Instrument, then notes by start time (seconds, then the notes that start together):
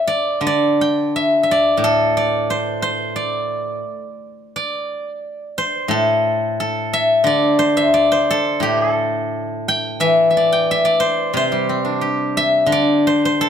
guzheng
Already playing: A4 C5 E5 G5
0.07 D5
0.41 D3
0.47 D5
0.81 G5
1.16 E5
1.43 E5
1.51 D5
1.77 A2
1.84 A4
2.17 D5
2.50 C5
2.82 C5
3.16 D5
4.56 D5
5.58 C5
5.88 A2 A4
6.60 A4
6.93 E5
7.24 D3 D5
7.59 C5
7.77 E5
7.94 D5
8.12 C5
8.30 A4
8.60 A2 G4
8.92 A4
9.68 G5
10.00 E3 E5
10.30 E5
10.37 D5
10.52 G5
10.71 E5
10.85 D5
11.00 C5
11.34 C3 C5
11.52 G3
11.69 C4
11.85 D4
12.01 G4
12.37 E5
12.66 D3
12.72 D5
13.07 C5
13.25 C5
13.41 A4